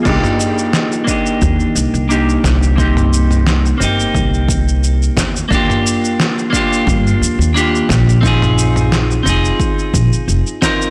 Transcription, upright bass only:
X:1
M:4/4
L:1/16
Q:"Swing 16ths" 1/4=88
K:Cm
V:1 name="Upright bass" clef=bass
C,, z6 z E,, z C,, C,,2 z C,,2- | C,,4- C,, z G,,, z C,,4- C,, z E,, z | E,, z6 z G,, z E,, E,,2 z B,,,2- | B,,,4- B,,, z F,,, z3 B,,, z F,,, z3 |]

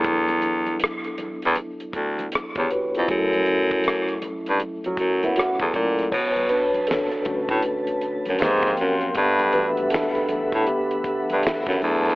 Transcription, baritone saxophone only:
X:1
M:4/4
L:1/16
Q:"Swing 16ths" 1/4=79
K:Glyd
V:1 name="Baritone saxophone" clef=bass
E,,4- E,, z E,, E,, z2 D,,2 E,, E,, z ^E,, | F,,6 G,, G,, z F,, F,,3 E,, ^A,,2 | B,,3 A,, z2 A,, A,, z2 F,, F,, ^G,,2 F,,2 | G,,3 A,, z2 A,, A,, z2 G,, G,, z F,, E,,2 |]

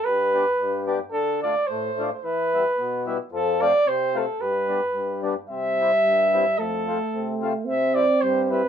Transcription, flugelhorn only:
X:1
M:2/4
L:1/16
Q:"Swing" 1/4=110
K:C
V:1 name="Flugelhorn"
B6 z2 | A2 d2 c3- c/2 c/2 | B6 z2 | A2 d2 c2 A2 |
B6 z2 | e8 | A6 z2 | e2 d2 c3/2 c/2 B2 |]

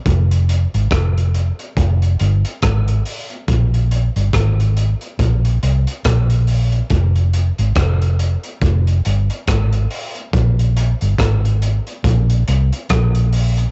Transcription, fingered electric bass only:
X:1
M:4/4
L:1/16
Q:"Swing 16ths" 1/4=70
K:Fm
V:1 name="Fingered electric bass" clef=bass
F,,,3 A,,, F,,,3 z F,,,2 G,,, z A,,,2 z2 | B,,,3 G,,, A,,,3 z B,,,2 C,, z B,,,4 | F,,,3 A,,, F,,,3 z F,,,2 G,,, z A,,,2 z2 | B,,,3 G,,, A,,,3 z B,,,2 C,, z B,,,4 |]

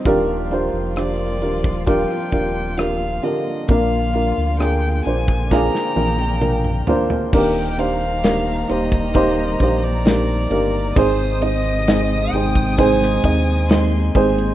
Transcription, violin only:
X:1
M:4/4
L:1/16
Q:1/4=66
K:Eb
V:1 name="Violin"
z4 d4 g4 f2 e2 | f4 g2 a2 b6 z2 | g2 f4 e4- e d4- d | c2 e4 g2 a6 z2 |]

